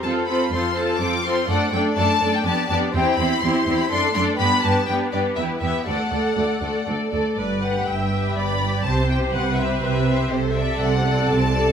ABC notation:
X:1
M:3/4
L:1/16
Q:1/4=123
K:Flyd
V:1 name="Violin section"
a2 b2 c'2 a2 d'2 c'2 | [K:G] f2 g2 a3 g a2 a2 | g2 b2 c'3 b c'2 c'2 | b2 a2 g2 d2 e2 e2 |
f8 z4 | d2 f2 g4 b4 | a2 g2 f2 e2 e4 | c2 e2 f4 a4 |]
V:2 name="Violin section"
[Ac]2 [Ac]2 [Ac]2 [Ac]2 [Ac]2 [Ac]2 | [K:G] [Ad]2 [Ad]2 [Ad]2 [Ad]2 [Gd]2 [Gd]2 | [Gc]2 [Gc]2 [Gc]2 [Gc]2 [Ad]2 [Ad]2 | [GB]2 [GB]2 [GB]2 [GB]2 [GB]2 [GB]2 |
[Ad]2 [Ad]2 [Ad]2 [Ad]2 [Ad]2 [Ad]2 | z2 [GB]4 [GB]4 [GB]2 | [Gc]2 [Gc]4 [Gc]4 [Gc]2 | z2 [Ad]4 [Ad]4 [Ad]2 |]
V:3 name="Viola section"
[CF]2 [CF]2 [CF]2 [CF]2 [CF]2 [CF]2 | [K:G] [A,D]2 [A,D]2 [A,D]2 [A,D]2 [B,D]2 [B,D]2 | [CE]2 [CE]2 [CE]2 [CE]2 [A,D]2 [A,D]2 | [B,D]2 [B,D]2 [B,D]2 [B,D]2 [B,E]2 [B,E]2 |
[A,A]2 [A,A]2 [A,A]2 [A,A]2 [A,A]2 [A,A]2 | B4 e4 d4 | c4 B8 | A12 |]
V:4 name="Cello section" clef=bass
F,,4 F,,4 F,,4 | [K:G] F,,2 F,,2 F,,2 F,,2 =F,,2 F,,2 | E,,2 E,,2 E,,2 E,,2 F,,2 F,,2 | G,,2 G,,2 G,,2 G,,2 E,,2 E,,2 |
D,,2 D,,2 D,,2 D,,2 D,,2 D,,2 | G,,4 G,,4 G,,4 | C,4 C,4 C,4 | C,4 C,4 C,4 |]
V:5 name="Double bass section" clef=bass
z12 | [K:G] z12 | z12 | z12 |
z12 | G,,,4 G,,,4 G,,,4 | C,,4 C,,4 C,,4 | C,,4 C,,4 C,,4 |]